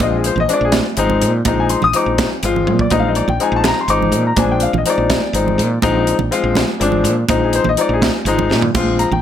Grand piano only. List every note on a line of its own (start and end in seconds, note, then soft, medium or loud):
0.00 0.32 F3 medium
0.00 0.32 G#3 medium
0.00 0.33 C4 medium
0.00 0.33 F4 medium
0.00 0.13 D#5 medium
0.17 0.26 G#4 medium
0.26 0.37 C5 medium
0.40 0.50 D#5 loud
0.48 0.81 F3 medium
0.48 0.81 G#3 medium
0.48 0.81 C4 medium
0.48 0.81 D4 medium
0.53 0.63 D5 medium
0.65 0.71 G#4 medium
0.97 1.29 F3 medium
0.97 1.30 G#3 medium
0.97 1.30 C4 medium
0.97 1.30 D#4 loud
1.46 1.78 F3 medium
1.46 1.78 G#3 medium
1.46 1.79 C4 medium
1.46 1.79 D#4 medium
1.46 1.58 D#5 medium
1.60 1.71 G#5 medium
1.70 1.82 C6 medium
1.84 1.95 D#6 loud
1.94 2.26 F3 medium
1.94 2.27 G#3 medium
1.94 2.27 C4 medium
1.94 2.27 D#4 medium
1.94 2.10 D6 medium
2.44 2.76 F3 medium
2.44 2.76 G#3 medium
2.44 2.76 C4 medium
2.44 2.76 F4 loud
2.81 2.92 D5 medium
2.91 3.24 F3 medium
2.91 3.24 G#3 medium
2.91 3.24 C4 medium
2.91 3.24 D#4 medium
2.91 3.00 D#5 medium
3.00 3.07 F5 medium
3.08 3.16 D#5 medium
3.16 3.28 D5 medium
3.29 3.41 G5 medium
3.40 3.72 F3 medium
3.40 3.73 G#3 medium
3.40 3.73 C4 medium
3.40 3.73 D#4 medium
3.40 3.53 G#5 medium
3.56 3.66 A5 medium
3.67 3.78 A#5 medium
3.81 3.91 C6 medium
3.89 4.21 F3 medium
3.89 4.21 G#3 medium
3.89 4.22 C4 medium
3.89 4.22 D#4 medium
3.89 4.23 D6 medium
4.27 4.38 A#5 medium
4.36 4.69 F3 medium
4.36 4.69 G#3 medium
4.36 4.70 C4 medium
4.36 4.70 D4 medium
4.36 4.50 G#5 medium
4.51 4.62 G5 medium
4.63 4.74 F5 medium
4.78 4.88 D#5 medium
4.85 5.18 F3 medium
4.85 5.18 G#3 medium
4.85 5.19 C4 medium
4.85 5.19 D#4 medium
4.90 6.30 D5 medium
5.33 5.66 F3 medium
5.33 5.67 G#3 medium
5.33 5.67 C4 medium
5.33 5.67 D#4 medium
5.82 6.15 F3 medium
5.82 6.15 G#3 medium
5.82 6.15 C4 medium
5.82 6.16 D#4 loud
6.31 6.64 F3 medium
6.31 6.64 G#3 medium
6.31 6.64 C4 medium
6.31 6.64 F4 loud
6.80 7.13 F3 loud
6.80 7.13 G#3 medium
6.80 7.13 C4 medium
6.80 7.13 D4 medium
7.29 7.61 F3 medium
7.29 7.62 G#3 medium
7.29 7.62 C4 medium
7.29 7.62 D#4 medium
7.45 7.55 G#4 medium
7.55 7.66 C5 medium
7.69 7.79 D#5 medium
7.78 8.10 F3 medium
7.78 8.10 G#3 medium
7.78 8.10 C4 medium
7.78 8.10 D#4 medium
7.78 7.91 D5 medium
7.94 8.00 G#4 medium
8.27 8.59 F3 medium
8.27 8.59 G#3 medium
8.27 8.59 C4 medium
8.27 8.60 D#4 loud
8.74 9.07 F3 medium
8.74 9.07 G#3 medium
8.74 9.08 C4 medium
8.74 9.08 F4 loud
8.99 9.11 A#5 medium
9.13 9.22 G5 medium